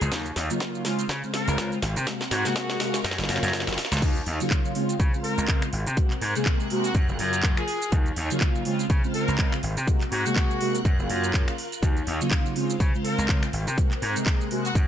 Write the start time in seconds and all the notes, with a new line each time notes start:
Already playing: F4 G#4 F#6
0.01 C#2, closed hi-hat, shaker
0.12 D#2 C#3 F#3 A#3 D#4 C#5, kick, snare, closed hi-hat, shaker
0.26 closed hi-hat, shaker
0.36 D#2, snare, open hi-hat
0.50 C#3 F#3 A#3 F4, closed hi-hat, shaker
0.60 kick, snare, closed hi-hat, shaker
0.75 shaker
0.85 C#3 G#3 C4 F4 C5 F5, snare, open hi-hat
0.99 closed hi-hat, shaker
1.09 C#3, kick, snare, closed hi-hat, shaker
1.23 C#3 G#3 C4 F4, shaker
1.34 A#4, snare, open hi-hat
1.48 C#2, closed hi-hat, shaker
1.58 C#2 C#3 G#3 C4 F4, kick, snare, closed hi-hat, shaker
1.72 closed hi-hat, shaker
1.82 G#1 C4 A#4 F#5, snare, open hi-hat
1.96 C3, closed hi-hat, shaker
2.07 C3 G#3 A#3 F#4, kick, snare, closed hi-hat, shaker
2.21 snare, closed hi-hat, shaker
2.31 G#2 F#4, snare, open hi-hat
2.45 C3 G#3 A#3 G#4, snare, closed hi-hat, shaker
2.56 kick, snare, closed hi-hat, shaker
2.70 snare, shaker
2.80 C3 G#3 A#3 F#4, snare, open hi-hat
2.94 snare, closed hi-hat, shaker
3.04 F#2 F4, kick, snare, closed hi-hat, shaker
3.11 snare
3.18 F#1 C#3 F#3 A#3 F4, snare, closed hi-hat, shaker
3.24 snare
3.29 F#2, snare, open hi-hat
3.36 snare
3.43 F#2, snare, closed hi-hat, shaker
3.48 snare
3.53 C#3 F#3 A#3 F4, kick, snare, closed hi-hat, shaker
3.60 snare
3.67 F#1, snare, closed hi-hat, shaker
3.73 snare
3.78 muted slap bass stroke, snare, open hi-hat
3.85 snare
3.92 C#2, snare, closed hi-hat, shaker
3.97 snare
4.02 D#2 C#3 F#3 A#3 D#4 C#5, kick, closed hi-hat, crash, shaker
4.16 closed hi-hat, shaker
4.26 D#2, open hi-hat
4.40 C#3 F#3 A#3 F4, closed hi-hat, shaker
4.50 kick, clap, closed hi-hat, shaker
4.65 shaker
4.75 C#3 G#3 C4 F4 C5 F5, open hi-hat
4.89 closed hi-hat, shaker
5.00 C#3, kick, closed hi-hat, shaker
5.13 C#3 G#3 C4 F4, shaker
5.24 A#4, open hi-hat
5.38 C#2, closed hi-hat, shaker
5.48 C#2 C#3 G#3 C4 F4, kick, clap, closed hi-hat, shaker
5.62 finger snap, closed hi-hat, shaker
5.73 G#1 C4 A#4 F#6, open hi-hat
5.87 C3, closed hi-hat, shaker
5.97 C3 G#3 A#3 F#4, kick, closed hi-hat, shaker
6.11 clap, closed hi-hat, shaker
6.21 G#2, open hi-hat
6.35 C3 G#3 A#3 G#4, closed hi-hat, shaker
6.45 kick, clap, closed hi-hat, shaker
6.60 shaker
6.70 C3 G#3 A#3 F#4, open hi-hat
6.84 F#4, closed hi-hat, shaker
6.95 F#2 F4, kick, closed hi-hat, shaker
7.08 F#1 C#3 F#3 A#3 F4, shaker
7.19 F#2, open hi-hat
7.33 closed hi-hat, shaker
7.43 C#3 F#3 A#3 F4, kick, clap, closed hi-hat, shaker
7.57 G#4, finger snap, closed hi-hat, shaker
7.68 open hi-hat
7.82 closed hi-hat, shaker
7.92 D#2 C#3 F#3 A#3 D#4 C#5, kick, closed hi-hat, shaker
8.06 closed hi-hat, shaker
8.16 D#2, open hi-hat
8.30 C#3 F#3 A#3 F4, closed hi-hat, shaker
8.40 kick, clap, closed hi-hat, shaker
8.55 shaker
8.65 C#3 G#3 C4 F4 C5 F5, open hi-hat
8.79 closed hi-hat, shaker
8.90 C#3, kick, closed hi-hat, shaker
9.04 C#3 G#3 C4 F4, shaker
9.14 A#4, open hi-hat
9.28 C#2, closed hi-hat, shaker
9.38 C#2 C#3 G#3 C4 F4, kick, clap, closed hi-hat, shaker
9.52 finger snap, closed hi-hat, shaker
9.63 G#1 C4 A#4 F#6, open hi-hat
9.77 C3, closed hi-hat, shaker
9.87 C3 G#3 A#3 F#4, kick, closed hi-hat, shaker
10.01 clap, closed hi-hat, shaker
10.12 G#2 F#4, open hi-hat
10.25 C3 G#3 A#3 G#4, closed hi-hat, shaker
10.36 kick, clap, closed hi-hat, shaker
10.51 shaker
10.60 C3 G#3 A#3 F#4, open hi-hat
10.75 closed hi-hat, shaker
10.85 F#2 F4, kick, closed hi-hat, shaker
10.99 F#1 C#3 F#3 A#3 F4, shaker
11.10 F#2, open hi-hat
11.24 closed hi-hat, shaker
11.34 C#3 F#3 A#3 F4, kick, clap, closed hi-hat, shaker
11.48 finger snap, closed hi-hat, shaker
11.58 open hi-hat
11.72 closed hi-hat, shaker
11.82 D#2 C#3 F#3 A#3 D#4 C#5, kick, closed hi-hat, shaker
11.97 closed hi-hat, shaker
12.07 D#2, open hi-hat
12.21 C#3 F#3 A#3 F4, closed hi-hat, shaker
12.31 kick, clap, closed hi-hat, shaker
12.46 shaker
12.56 C#3 G#3 C4 F4 C5 F5, open hi-hat
12.70 closed hi-hat, shaker
12.80 C#3, kick, closed hi-hat, shaker
12.94 C#3 G#3 C4 F4, shaker
13.04 A#4, open hi-hat
13.18 C#2, closed hi-hat, shaker
13.29 C#2 C#3 G#3 C4 F4, kick, clap, closed hi-hat, shaker
13.43 finger snap, closed hi-hat, shaker
13.53 G#1 C4 A#4 F#6, open hi-hat
13.67 C3, closed hi-hat, shaker
13.78 C3 G#3 A#3 F#4, kick, closed hi-hat, shaker
13.91 clap, closed hi-hat, shaker
14.02 G#2, open hi-hat
14.16 C3 G#3 A#3 G#4, closed hi-hat, shaker
14.26 kick, clap, closed hi-hat, shaker
14.41 shaker
14.51 C3 G#3 A#3 F#4, open hi-hat
14.65 F#4, closed hi-hat, shaker
14.75 F#2 F4 A#4, kick, closed hi-hat, shaker